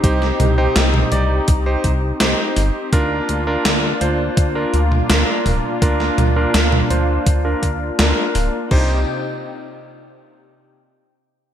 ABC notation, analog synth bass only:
X:1
M:4/4
L:1/8
Q:1/4=83
K:Cm
V:1 name="Analog synth bass" clef=bass
C,, C,, C,, C,, C,, C,, C,, G,,, | D,, D,, D,, D,, D,, D,, D,, D,,, | D,, D,, D,, D,, D,, D,, D,, D,,, | C,, z6 z |]